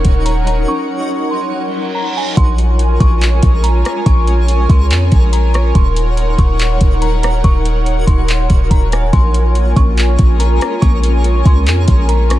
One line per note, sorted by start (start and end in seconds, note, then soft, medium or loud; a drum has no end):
0.00 2.34 F#3 medium
0.00 0.67 C#4 medium
0.00 0.45 D#4 medium
0.00 2.34 D#4 medium
0.00 2.34 A#4 medium
0.00 2.33 C#5 medium
0.00 2.34 C#5 medium
0.00 2.34 F#5 medium
0.00 0.22 C#6 medium
0.05 0.66 D#1 loud
0.05 kick medium
0.05 closed hi-hat medium
0.25 1.53 C#5 medium
0.25 0.46 A#5 medium
0.25 closed hi-hat medium
0.47 1.30 D#4 medium
0.47 0.67 A#5 medium
0.47 closed hi-hat medium
0.68 1.09 C#4 medium
0.68 1.28 C#6 loud
1.10 2.37 C#4 medium
1.31 2.15 D#4 medium
1.31 1.91 C6 medium
1.53 reverse cymbal medium
1.95 2.37 C#5 medium
1.95 2.15 A#5 medium
2.16 2.37 D#4 medium
2.16 2.37 G#5 medium
2.37 2.98 A#1 loud
2.37 5.72 G#3 medium
2.37 5.72 C#4 medium
2.37 5.72 F4 medium
2.37 5.72 A#4 medium
2.37 12.39 A#4 medium
2.37 12.39 C#5 medium
2.37 5.72 G#5 medium
2.37 2.97 C6 loud
2.37 kick loud
2.37 closed hi-hat medium
2.58 closed hi-hat medium
2.79 closed hi-hat medium
3.00 3.41 A#1 loud
3.00 3.60 C#6 medium
3.00 kick loud
3.00 closed hi-hat medium
3.21 clap loud
3.21 closed hi-hat medium
3.43 3.83 A#1 loud
3.43 kick loud
3.43 closed hi-hat medium
3.64 3.83 A#5 medium
3.64 closed hi-hat medium
3.84 4.05 A#5 medium
3.84 cross-stick loud
3.84 closed hi-hat medium
4.06 4.67 A#1 loud
4.06 4.66 C#6 loud
4.06 kick loud
4.06 closed hi-hat medium
4.27 closed hi-hat medium
4.48 closed hi-hat medium
4.69 4.92 C#2 loud
4.69 5.29 C6 medium
4.69 kick loud
4.69 closed hi-hat medium
4.91 5.11 F2 loud
4.91 clap loud
4.91 closed hi-hat medium
5.12 5.73 A#1 loud
5.12 kick loud
5.12 closed hi-hat medium
5.33 5.53 A#5 medium
5.33 closed hi-hat medium
5.54 5.74 C#6 medium
5.54 cross-stick loud
5.54 closed hi-hat medium
5.75 6.36 D#1 loud
5.75 9.10 F#3 medium
5.75 9.10 D#4 medium
5.75 9.10 C#5 medium
5.75 9.10 F#5 loud
5.75 6.35 C6 medium
5.75 kick loud
5.75 closed hi-hat medium
5.96 closed hi-hat medium
6.17 closed hi-hat medium
6.38 6.79 D#1 loud
6.38 6.98 C#6 medium
6.38 kick loud
6.38 closed hi-hat medium
6.59 clap loud
6.59 closed hi-hat medium
6.81 7.42 D#1 loud
6.81 kick loud
6.81 closed hi-hat medium
7.02 7.22 A#5 medium
7.02 closed hi-hat medium
7.23 7.43 A#5 medium
7.23 cross-stick loud
7.23 closed hi-hat medium
7.44 8.05 D#1 loud
7.44 8.04 C#6 loud
7.44 kick loud
7.44 closed hi-hat medium
7.65 closed hi-hat medium
7.86 closed hi-hat medium
8.07 8.48 D#1 loud
8.07 8.67 C6 medium
8.07 kick loud
8.07 closed hi-hat medium
8.28 clap loud
8.28 closed hi-hat medium
8.50 8.70 D#1 loud
8.50 kick loud
8.50 closed hi-hat medium
8.71 9.11 D#1 loud
8.71 8.91 A#5 medium
8.71 kick loud
8.71 closed hi-hat medium
8.92 9.12 G#5 medium
8.92 cross-stick loud
8.92 closed hi-hat medium
9.13 9.74 A#1 loud
9.13 12.39 G#3 medium
9.13 9.54 A#3 medium
9.13 12.39 C#4 medium
9.13 12.39 F4 medium
9.13 12.39 A#4 medium
9.13 12.39 G#5 medium
9.13 9.73 C6 loud
9.13 kick loud
9.13 closed hi-hat medium
9.34 closed hi-hat medium
9.55 10.81 A#3 medium
9.55 closed hi-hat medium
9.76 10.17 A#1 loud
9.76 10.60 C#4 medium
9.76 10.36 C#6 medium
9.76 kick loud
9.76 closed hi-hat medium
9.97 clap loud
9.97 closed hi-hat medium
10.19 10.59 A#1 loud
10.19 kick loud
10.19 closed hi-hat medium
10.39 11.67 A#4 medium
10.39 10.59 A#5 medium
10.39 closed hi-hat medium
10.60 11.44 C#4 medium
10.60 10.80 A#5 medium
10.60 cross-stick loud
10.60 closed hi-hat medium
10.82 11.43 A#1 loud
10.82 11.23 A#3 loud
10.82 11.41 C#6 loud
10.82 kick loud
10.82 closed hi-hat medium
11.03 closed hi-hat medium
11.24 12.39 A#3 medium
11.24 closed hi-hat medium
11.45 11.68 C#2 loud
11.45 12.29 C#4 medium
11.45 12.05 C6 medium
11.45 kick loud
11.45 closed hi-hat medium
11.66 11.87 F2 loud
11.66 clap loud
11.66 closed hi-hat medium
11.88 12.39 A#1 loud
11.88 kick loud
11.88 closed hi-hat medium
12.08 12.39 A#4 medium
12.08 12.29 A#5 medium
12.08 closed hi-hat medium
12.30 12.39 C#4 medium
12.30 12.39 C#6 medium
12.30 cross-stick loud
12.30 closed hi-hat medium